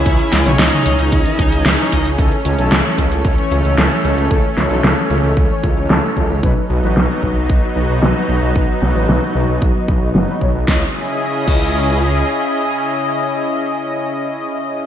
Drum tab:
CC |----------------|----------------|----------------|----------------|
HH |xxxxxxxxxxxxxxxx|xxxxxxxxxxxxxxxx|xxxxxxxxxxxxxxxx|xxxxx-xx--x---x-|
SD |--o-o-------o---|----o-------o---|--o-o-------o---|----o-------o---|
T2 |---o-o----------|----------------|----------------|----------------|
BD |o-------o-o---o-|o-----o-o-------|o-------o-o---o-|o-----o-o-------|

CC |----------------|------x---------|----------------|
HH |--x---x----x---x|----------------|----------------|
SD |--o-o-------o---|o---------------|----------------|
T2 |----------------|----------------|----------------|
BD |o-------o-o---o-|o-----o---------|----------------|